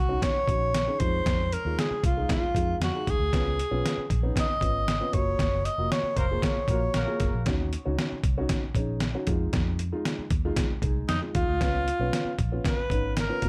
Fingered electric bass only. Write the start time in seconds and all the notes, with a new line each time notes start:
Already playing: C2
0.35 muted fingered electric bass stroke
0.47 A#1
1.00 F2
1.26 F2
1.65 D#2
1.91 muted fingered electric bass stroke
2.03 C2
2.42 muted fingered electric bass stroke
2.55 F2
2.80 F2
3.07 D#2
3.19 D2
3.33 C#2
3.71 B1
3.97 muted fingered electric bass stroke
4.10 A#1
4.49 muted fingered electric bass stroke
4.61 G#1
5.13 F#1
5.39 F#1
5.78 F1
6.03 muted fingered electric bass stroke
6.17 F1
6.57 muted fingered electric bass stroke
6.67 A#1
6.95 A#1
7.20 F#1
7.34 A#1
7.46 D#2
7.86 C#2
8.12 muted fingered electric bass stroke
8.24 C2
8.64 muted fingered electric bass stroke
8.74 A#1
9.27 F2
9.53 F2
10.19 muted fingered electric bass stroke
10.30 D#2
10.70 muted fingered electric bass stroke
10.82 C2
11.09 F2
11.35 D#2
11.48 D2
11.61 C#2
11.99 B1
12.25 muted fingered electric bass stroke
12.39 A#1
12.78 muted fingered electric bass stroke
12.90 G#1
13.43 F#1